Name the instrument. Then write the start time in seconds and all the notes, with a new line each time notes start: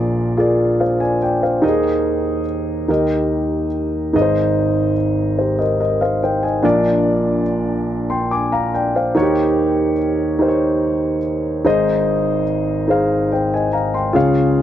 grand piano
Already playing: A#1 A#2 F4 G#4 A#4 D5
0.37 F4 G#4 A#4 D5
0.80 C5 F5
1.00 D5 G#5
1.22 D5 G5
1.43 C5 F5
1.62 D#2 D#3 D#4 G4 A#4 D#5
1.69 G#4
2.88 D#2 D#3 D#4 G4 A#4 D#5
4.13 G#1 G#2 D#4 G#4 B4 D#5
4.22 C5
5.39 G4 C5
5.59 A#4 D#5
5.80 A#4 D#5
6.01 C5 F5
6.23 C5 G5
6.43 D#5 G#5
6.62 A#1 A#2 D4 F4 A#4 D5
8.10 G5 C6
8.31 G#5 D6
8.52 F5 A#5
8.74 D5 G5
8.96 C5 F5
9.15 D#2 D#3 D#4 F#4 A#4 C#5
9.22 G4
10.39 D#4 G4 A#4 C5
10.48 C#5
11.64 G#1 G#2 D#4 G#4 C5 D#5
12.88 D#4 G#4 C5 F5
13.32 C5 G5
13.54 D#5 G#5
13.73 F5 A#5
13.94 G5 C6
14.13 C#2 C#3 F4 G#4 C#5 F5